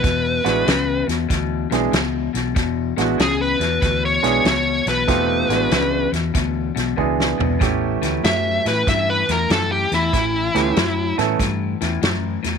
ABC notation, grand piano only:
X:1
M:4/4
L:1/8
Q:"Swing" 1/4=95
K:A
V:1 name="Grand piano"
z [G,B,DEF] z3 [G,B,DEG] z2 | z [G,B,DEF] z3 [G,B,DEG] z2 | [A,=C^D=F=G] [^G,B,=DE^F]2 z3 [G,B,DE^G]2 | [A,B,CE=G]4- [A,B,CEG] z3 |
z [A,B,CE=G] z [A,B,CEA] z4 |]